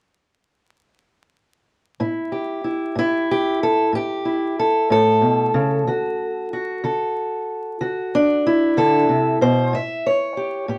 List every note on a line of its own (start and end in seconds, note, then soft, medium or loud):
2.00 2.58 A2 medium
2.00 2.63 E4 medium
2.32 3.29 G4 soft
2.64 2.97 E4 soft
2.95 3.54 A2 medium
2.95 3.94 E4 loud
3.31 3.62 G4 medium
3.63 3.94 A4 medium
3.93 4.51 A2 medium
3.93 4.59 G4 medium
4.25 5.83 E4 soft
4.59 4.91 A4 medium
4.90 5.22 A2 medium
4.90 6.83 A4 loud
5.21 5.54 B2 medium
5.54 5.87 C#3 medium
5.87 6.45 D3 medium
5.87 6.52 F#4 medium
6.53 7.80 F#4 soft
6.84 7.42 D3 medium
6.84 8.78 A4 medium
7.81 8.38 D3 medium
7.81 8.45 F#4 soft
8.15 9.10 D4 medium
8.47 9.42 E4 medium
8.77 9.09 D3 medium
8.77 9.42 A4 medium
9.09 9.41 C3 medium
9.41 9.73 B2 medium
9.41 9.74 C5 medium
9.73 10.31 A2 medium
9.73 10.06 E5 medium
10.06 10.78 C#5 medium
10.37 10.69 G4 medium
10.68 10.78 A2 medium
10.68 10.78 G4 soft